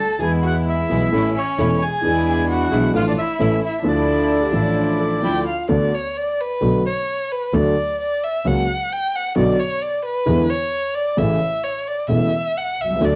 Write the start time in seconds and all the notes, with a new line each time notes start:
Already playing: A4
0.00 A5
0.19 E2 E3 G#3 B3 E4 G#4 G#5
0.43 F#4 F#5
0.65 E4
0.70 E5
0.89 B1 B2 E3 G#3 B3 E4 G#4
1.12 A1 A2 E3 A3 C#4 E4 A4
1.35 C#4 C#5
1.58 E1 E2 E3 A3 C#4 E4 A4
1.81 G#4 G#5
2.01 E2 E3 G#3 B3 D4 E4 G#4
2.49 F#4 F#5
2.71 B1 B2 E3 G#3 B3 D4 E4 G#4
2.93 A1 A2 F3 A3 D4 F4 A4 F5
3.07 D4 D5
3.18 E4 E5
3.39 A1 A2 E3 A3 C#4 E4 A4
3.62 E4 E5
3.82 D2 D3 F3 D4 E4 A4
3.88 D5
4.31 A4
4.43 G4
4.51 A1 A2 F3 D4 E4 A4
4.55 A4
5.00 A4
5.22 D2 D3 F3 D4 E4 F4 A4 G5
5.47 F5
5.69 D2 D3 A3 B3 F#4 D5
5.94 C#5
6.17 D5
6.40 B4
6.61 B1 B2 D3 A3 B3 F#4
6.86 C#5
7.32 B4
7.53 D2 D3 F#3 A3 F#4 D5
8.01 D5
8.24 E5
8.45 C#2 C#3 F#3 A#3 F#4 F#5
8.92 G5
9.15 F#5
9.35 B1 B2 D3 F#3 B3 F#4 D5
9.59 C#5
9.82 D5
10.05 B4
10.26 E2 D3 E3 G#3 B3 E4
10.50 C#5
10.95 D5
11.17 A1 A2 C#3 E3 A3 E4 E5
11.63 C#5
11.87 D5
12.09 E1 E2 C#3 E3 A3 E4 E5
12.57 F#5
12.78 C2 E5
12.84 B1
12.90 C2
12.95 C#2
13.01 D2 D3 F#3 A3 F#4 D5